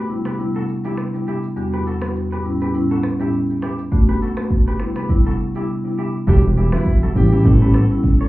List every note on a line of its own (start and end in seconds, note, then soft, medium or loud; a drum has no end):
0.09 0.37 C3 medium
0.09 0.37 G3 medium
0.09 0.37 B3 medium
0.09 0.37 D4 medium
0.09 0.37 E4 medium
0.09 shaker soft
0.25 0.35 G4 medium
0.25 0.34 B4 medium
0.25 finger snap medium
0.25 cross-stick medium
0.25 shaker medium
0.39 0.81 C3 medium
0.39 0.81 G3 medium
0.39 0.81 B3 medium
0.39 0.81 D4 medium
0.39 0.81 E4 loud
0.39 shaker medium
0.55 0.64 F#4 medium
0.55 0.64 A4 medium
0.55 shaker soft
0.69 shaker medium
0.84 0.99 C3 medium
0.84 0.99 G3 medium
0.84 0.99 B3 medium
0.84 0.99 D4 medium
0.84 0.99 E4 medium
0.84 0.94 E4 medium
0.84 0.93 G4 medium
0.84 shaker medium
0.98 finger snap medium
0.98 cross-stick medium
0.98 shaker medium
1.14 1.28 C3 medium
1.14 1.28 G3 medium
1.14 1.28 B3 medium
1.14 1.28 D4 medium
1.14 1.28 E4 medium
1.14 shaker soft
1.28 1.38 E4 medium
1.28 1.38 G4 medium
1.28 shaker medium
1.43 shaker medium
1.56 1.73 E2 medium
1.56 1.74 G3 medium
1.56 1.74 B3 medium
1.56 1.74 D4 medium
1.56 1.74 F#4 loud
1.56 shaker medium
1.73 1.82 G4 medium
1.73 1.81 B4 medium
1.73 shaker soft
1.87 1.97 F#4 medium
1.87 1.96 A4 medium
1.87 shaker medium
2.02 2.16 E2 medium
2.02 2.16 G3 medium
2.02 2.16 B3 medium
2.02 2.17 D4 medium
2.02 2.17 F#4 medium
2.02 finger snap medium
2.02 cross-stick loud
2.02 shaker medium
2.16 shaker medium
2.32 2.41 G4 medium
2.32 2.40 B4 medium
2.32 shaker medium
2.44 2.62 A2 medium
2.44 2.62 G3 medium
2.44 2.62 B3 medium
2.44 2.62 C#4 medium
2.44 2.62 E4 medium
2.44 shaker soft
2.61 2.70 G4 medium
2.61 2.70 B4 medium
2.61 shaker medium
2.74 3.16 A2 medium
2.74 3.16 G3 medium
2.74 3.16 B3 medium
2.74 3.16 C#4 medium
2.74 3.16 E4 medium
2.74 shaker medium
2.90 3.00 F#4 medium
2.90 2.99 A4 medium
2.90 shaker soft
3.03 finger snap medium
3.03 cross-stick loud
3.03 shaker medium
3.19 3.34 A2 medium
3.19 3.34 G3 medium
3.19 3.34 B3 medium
3.19 3.34 C#4 medium
3.19 3.34 E4 medium
3.19 3.29 E4 medium
3.19 3.28 G4 medium
3.19 shaker medium
3.33 shaker medium
3.50 shaker soft
3.62 3.74 E4 medium
3.62 3.73 G4 medium
3.62 finger snap medium
3.62 cross-stick medium
3.62 shaker medium
3.78 shaker medium
3.92 4.09 A3 medium
3.92 4.09 B3 medium
3.92 4.09 D4 medium
3.92 4.09 F#4 loud
3.92 kick loud
3.92 shaker medium
4.08 4.17 G4 medium
4.08 4.17 B4 medium
4.08 shaker soft
4.22 4.32 F#4 medium
4.22 4.32 A4 medium
4.22 shaker medium
4.37 4.77 A3 medium
4.37 4.77 B3 medium
4.37 4.77 D4 medium
4.37 4.77 F#4 medium
4.37 finger snap medium
4.37 cross-stick loud
4.37 shaker medium
4.50 kick loud
4.50 shaker medium
4.67 4.76 G4 medium
4.67 4.76 B4 medium
4.67 shaker medium
4.80 5.07 C3 medium
4.80 5.07 G3 medium
4.80 5.08 B3 medium
4.80 5.08 D4 medium
4.80 5.08 E4 medium
4.80 finger snap medium
4.80 cross-stick medium
4.80 shaker soft
4.96 5.06 G4 medium
4.96 5.05 B4 medium
4.96 finger snap medium
4.96 cross-stick medium
4.96 shaker medium
5.09 5.51 C3 medium
5.09 5.51 G3 medium
5.09 5.51 B3 medium
5.09 5.51 D4 medium
5.09 5.51 E4 loud
5.09 kick loud
5.09 shaker medium
5.26 5.35 F#4 medium
5.26 5.34 A4 medium
5.26 shaker soft
5.39 shaker medium
5.55 5.69 C3 medium
5.55 5.69 G3 medium
5.55 5.70 B3 medium
5.55 5.70 D4 medium
5.55 5.70 E4 medium
5.55 5.64 E4 medium
5.55 5.64 G4 medium
5.55 shaker medium
5.84 5.99 C3 medium
5.84 5.99 G3 medium
5.84 5.99 B3 medium
5.84 5.99 D4 medium
5.84 5.99 E4 medium
5.99 6.09 E4 medium
5.99 6.08 G4 medium
6.27 6.73 E1 loud
6.27 6.44 G3 loud
6.27 6.44 B3 medium
6.27 6.44 D4 medium
6.27 6.38 E4 medium
6.27 6.44 F#4 loud
6.27 6.42 G4 loud
6.27 6.38 A4 medium
6.27 kick loud
6.27 low conga medium
6.27 shaker medium
6.43 shaker soft
6.57 6.68 E4 medium
6.57 6.67 G4 medium
6.57 shaker medium
6.72 6.87 G3 medium
6.72 6.87 B3 medium
6.72 6.87 D4 medium
6.72 6.99 E4 medium
6.72 6.87 F#4 medium
6.72 6.82 G4 medium
6.72 6.82 B4 medium
6.72 finger snap medium
6.72 cross-stick loud
6.72 high conga medium
6.72 shaker medium
6.86 kick loud
6.86 shaker medium
7.02 7.11 F#4 medium
7.02 7.11 A4 medium
7.02 high conga medium
7.02 shaker medium
7.15 7.38 A1 loud
7.15 7.32 G3 medium
7.15 7.33 B3 medium
7.15 7.33 C#4 medium
7.15 7.33 E4 medium
7.15 7.41 G4 medium
7.15 high conga medium
7.15 low conga medium
7.15 shaker soft
7.32 7.41 E4 medium
7.32 7.40 G4 medium
7.32 shaker medium
7.45 7.80 A1 loud
7.45 7.86 G3 medium
7.45 7.87 B3 medium
7.45 7.87 C#4 medium
7.45 7.87 E4 loud
7.45 7.88 A4 medium
7.45 kick loud
7.45 low conga medium
7.45 shaker medium
7.61 7.70 G4 medium
7.61 7.70 B4 medium
7.61 shaker soft
7.74 7.85 F#4 medium
7.74 7.85 A4 medium
7.74 finger snap medium
7.74 cross-stick loud
7.74 shaker medium
7.90 8.05 G3 medium
7.90 8.05 B3 medium
7.90 8.05 C#4 medium
7.90 8.05 E4 medium
7.90 shaker medium
8.04 kick medium
8.04 low conga medium
8.04 shaker medium
8.21 8.29 A4 medium
8.21 8.29 C#5 medium
8.21 shaker soft